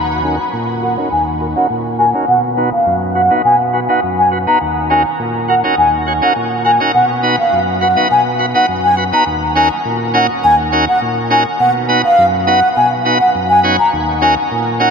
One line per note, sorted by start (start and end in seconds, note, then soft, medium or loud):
0.00 0.39 D#2 medium
0.24 0.36 C#4 medium
0.24 0.36 D#4 medium
0.24 0.37 F#4 medium
0.24 0.37 A#4 medium
0.24 0.35 G#5 medium
0.53 0.97 A#2 medium
0.82 0.88 F#4 medium
0.82 0.89 A#4 medium
0.82 0.94 F#5 medium
0.97 1.09 C#4 medium
0.97 1.09 D#4 medium
0.97 1.09 F#4 medium
0.97 1.09 A#4 medium
1.12 1.56 D#2 medium
1.12 1.23 G#5 medium
1.40 1.47 F#4 medium
1.40 1.47 A#4 medium
1.56 1.67 C#4 medium
1.56 1.67 D#4 medium
1.56 1.67 F#4 medium
1.56 1.68 A#4 medium
1.56 1.66 F#5 medium
1.70 2.14 A#2 medium
1.99 2.05 F#4 medium
1.99 2.06 A#4 medium
1.99 2.10 G#5 medium
2.14 2.25 C#4 medium
2.14 2.25 D#4 medium
2.14 2.26 F#4 medium
2.14 2.26 A#4 medium
2.28 2.72 B2 medium
2.28 2.39 F#5 medium
2.57 2.70 B3 medium
2.57 2.70 D#4 medium
2.57 2.70 F#4 medium
2.57 2.70 B4 medium
2.73 2.94 F5 medium
2.87 3.30 F#2 medium
3.15 3.22 F#4 medium
3.15 3.22 B4 medium
3.15 3.36 F#5 medium
3.31 3.42 B3 medium
3.31 3.42 D#4 medium
3.31 3.42 F#4 medium
3.31 3.42 B4 medium
3.45 3.89 B2 medium
3.45 3.56 G#5 medium
3.73 3.80 F#4 medium
3.73 3.80 B4 medium
3.89 4.00 B3 medium
3.89 4.00 D#4 medium
3.89 4.00 F#4 medium
3.89 4.00 B4 medium
3.89 3.99 F#5 medium
4.03 4.47 F#2 medium
4.19 4.28 G#5 medium
4.32 4.38 F#4 medium
4.32 4.39 B4 medium
4.47 4.58 B3 medium
4.47 4.58 D#4 medium
4.47 4.59 F#4 medium
4.47 4.59 B4 medium
4.47 4.57 A#5 medium
4.61 5.05 D#2 medium
4.90 5.02 C#4 medium
4.90 5.03 D#4 medium
4.90 5.03 F#4 medium
4.90 5.03 A#4 medium
4.90 5.02 G#5 medium
5.20 5.64 A#2 medium
5.48 5.55 F#4 medium
5.48 5.55 A#4 medium
5.48 5.60 F#5 medium
5.64 5.75 C#4 medium
5.64 5.75 D#4 medium
5.64 5.75 F#4 medium
5.64 5.76 A#4 medium
5.78 6.22 D#2 medium
5.78 5.89 G#5 medium
6.07 6.13 F#4 medium
6.07 6.13 C#5 medium
6.22 6.33 C#4 medium
6.22 6.33 D#4 medium
6.22 6.33 F#4 medium
6.22 6.34 A#4 medium
6.22 6.32 F#5 medium
6.36 6.80 A#2 medium
6.65 6.71 F#4 medium
6.65 6.72 A#4 medium
6.65 6.76 G#5 medium
6.80 6.91 C#4 medium
6.80 6.92 D#4 medium
6.80 6.92 F#4 medium
6.80 6.92 A#4 medium
6.94 7.38 B2 medium
6.94 7.05 F#5 medium
7.23 7.36 B3 medium
7.23 7.36 D#4 medium
7.23 7.36 F#4 medium
7.23 7.36 B4 medium
7.39 7.60 F5 medium
7.53 7.97 F#2 medium
7.81 7.88 F#4 medium
7.81 7.88 B4 medium
7.81 8.02 F#5 medium
7.97 8.08 B3 medium
7.97 8.08 D#4 medium
7.97 8.08 F#4 medium
7.97 8.08 B4 medium
8.11 8.55 B2 medium
8.11 8.22 G#5 medium
8.39 8.46 F#4 medium
8.39 8.46 B4 medium
8.55 8.66 B3 medium
8.55 8.66 D#4 medium
8.55 8.66 F#4 medium
8.55 8.66 B4 medium
8.55 8.65 F#5 medium
8.69 9.13 F#2 medium
8.85 8.94 G#5 medium
8.97 9.04 F#4 medium
8.97 9.04 B4 medium
9.13 9.24 B3 medium
9.13 9.24 D#4 medium
9.13 9.24 F#4 medium
9.13 9.25 B4 medium
9.13 9.23 A#5 medium
9.27 9.71 D#2 medium
9.56 9.68 C#4 medium
9.56 9.69 D#4 medium
9.56 9.69 F#4 medium
9.56 9.69 A#4 medium
9.56 9.68 G#5 medium
9.85 10.29 A#2 medium
10.14 10.27 C#4 medium
10.14 10.27 D#4 medium
10.14 10.27 F#4 medium
10.14 10.27 A#4 medium
10.14 10.26 F#5 medium
10.44 10.88 D#2 medium
10.44 10.55 G#5 medium
10.72 10.85 C#4 medium
10.72 10.85 D#4 medium
10.72 10.85 F#4 medium
10.72 10.85 A#4 medium
10.89 10.98 F#5 medium
11.02 11.46 A#2 medium
11.30 11.43 C#4 medium
11.30 11.43 D#4 medium
11.30 11.44 F#4 medium
11.30 11.44 A#4 medium
11.30 11.42 G#5 medium
11.60 12.04 B2 medium
11.60 11.71 F#5 medium
11.89 12.01 B3 medium
11.89 12.02 D#4 medium
11.89 12.02 F#4 medium
11.89 12.02 B4 medium
12.05 12.25 F5 medium
12.18 12.62 F#2 medium
12.47 12.60 B3 medium
12.47 12.60 D#4 medium
12.47 12.60 F#4 medium
12.47 12.60 B4 medium
12.47 12.68 F#5 medium
12.76 13.21 B2 medium
12.76 12.88 G#5 medium
13.05 13.18 B3 medium
13.05 13.18 D#4 medium
13.05 13.18 F#4 medium
13.05 13.18 B4 medium
13.21 13.31 F#5 medium
13.35 13.79 F#2 medium
13.50 13.60 G#5 medium
13.63 13.76 B3 medium
13.63 13.76 D#4 medium
13.63 13.77 F#4 medium
13.63 13.77 C#5 medium
13.79 13.89 A#5 medium
13.93 14.37 D#2 medium
14.22 14.34 C#4 medium
14.22 14.35 D#4 medium
14.22 14.35 F#4 medium
14.22 14.35 A#4 medium
14.22 14.33 G#5 medium
14.52 14.90 A#2 medium
14.80 14.90 C#4 medium
14.80 14.90 D#4 medium
14.80 14.90 F#4 medium
14.80 14.90 A#4 medium
14.80 14.90 F#5 medium